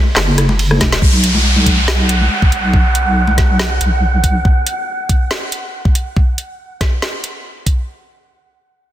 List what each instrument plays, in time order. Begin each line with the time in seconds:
0.16 wobble bass F#1, snare, clap, ride, muted conga
0.38 cross-stick, closed hi-hat
0.49 muted conga
0.59 ride
0.71 cross-stick, muted conga
0.76 wobble bass F1
0.80 kick, snare, closed hi-hat, high conga
0.92 snare
1.02 wobble bass B1, synth texture F#5, kick, downlifter
1.24 closed hi-hat
1.35 high conga
1.56 high conga
1.66 kick, closed hi-hat
1.88 snare
2.09 closed hi-hat
2.21 high conga
2.42 kick
2.52 wobble bass B1, closed hi-hat
2.73 kick
2.95 closed hi-hat
3.27 high conga
3.38 kick, snare, closed hi-hat
3.59 snare
3.81 wobble bass B1, closed hi-hat
4.24 wobble bass B1, kick, closed hi-hat
4.45 kick
4.67 closed hi-hat
5.09 kick, closed hi-hat
5.31 snare
5.52 closed hi-hat
5.85 kick
5.95 closed hi-hat
6.16 kick
6.38 closed hi-hat
6.81 kick, snare, closed hi-hat
7.02 snare
7.24 closed hi-hat
7.66 kick, closed hi-hat